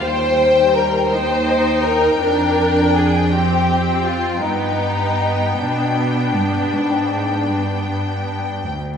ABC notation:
X:1
M:12/8
L:1/16
Q:3/8=53
K:Gphr
V:1 name="Violin section"
g6 g16- g2 | g16- g6- g z |]
V:2 name="Violin section"
c4 B2 c4 B2 B4 A2 G4 F2 | E6 D16 z2 |]
V:3 name="Viola section"
G,6 E6 D6 C6 | =B,16- B,4- B, z3 |]
V:4 name="Cello section" clef=bass
E,,12 F,,12 | G,,6 =B,,4 G,,2 A,,4 G,,2 G,,4 D,,2 |]